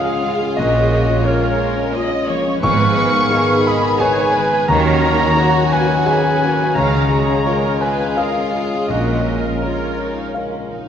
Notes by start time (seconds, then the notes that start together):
Already playing: C#2 C#3 F3 G#3 C#4 F4 G#4 C#5 F5 F#5 G#5 C#6
0.06 C#4
0.23 G#3
0.40 C#4
0.57 A#1 A#2 A#3 C#4 F#4 D#5
0.61 D#5
0.75 C#4
0.90 A#3 C#5
1.08 C#4 F4
1.24 A#3 C#4 F4 A#4 C#5 F5
1.42 C#4 C#6
1.58 A#3 F5
1.75 C#4 C#5
1.93 A#3 C#4 F4 C#5 D#5
2.09 C#4
2.27 F3 A#3 C#5
2.43 C#4
2.62 G#1 G#2 D#3 G#3 B3 G#4 B4 F5 C#6
2.79 B3 D#4
2.96 G#3 B4
3.12 B3 D#5
3.30 G#3 D#4 G#4 B4 G#5
3.49 B3 B5
3.66 G#3 D#5 G#5 B5
3.84 B3 D#5
3.99 D#4 G#4 B4 C#5 G#5
4.04 G#3
4.18 B3 D#4
4.35 D#3 G#3 B4
4.52 B3 D#4
4.68 D#2 D#3 F#3 A#3 C#4 F#4 A#4 C#5 A#5
4.88 C#4 D#4
5.05 A#3 C#5
5.21 C#4 D#5
5.37 A#3 D#4 F#4 C#5 F#5
5.56 C#4 C#6
5.72 A#3 B4 F#5 G#5
5.90 C#4 D#5
6.06 A#3 D#4 F#4 G#4 B4 C#5 G#5
6.24 C#4 D#4
6.43 A#3 C#4 F#4
6.59 C#4 D#4
6.75 C#2 C#3 G#3 C#5 F5 A#5
6.94 C#4 G#4
7.10 G#3 G#4 C#5
7.29 C#4 F5
7.46 G#3 F4 G#4 A#4 C#5 G#5
7.63 C#4 C#6
7.81 G#3 B4 G#5
7.99 C#4 F5
8.16 G#3 F4 G#4 A#4 C#5 F5
8.34 C#4
8.52 G#3 G#4
8.73 C#4
8.88 A#1 A#2 C#4 F#4 A#4 D#5
8.92 A#3
9.07 C#4 F4
9.26 A#3 C#5
9.43 C#4 F5
9.62 F4 A#4 C#5 A#5
9.79 C#6
9.99 D#4 A#5
10.16 F5
10.34 C#4 F4 A#4 C#5 F5
10.52 F4
10.70 F3 D#4